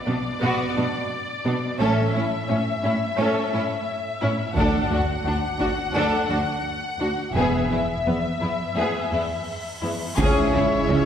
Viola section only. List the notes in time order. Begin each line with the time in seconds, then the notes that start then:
0.06 B3
0.40 B3
0.76 B3
1.45 B3
1.80 C#4
2.16 C#4
2.49 C#4
2.84 C#4
3.17 C#4
3.53 C#4
4.22 C#4
4.57 D4
4.93 D4
5.27 D4
5.60 D4
5.95 D4
6.30 D4
7.00 D4
7.36 B3
7.72 B3
8.07 B3
8.42 B3
8.77 B3
9.13 B3
9.84 B3
10.20 C#4
10.55 C#4
10.90 C#4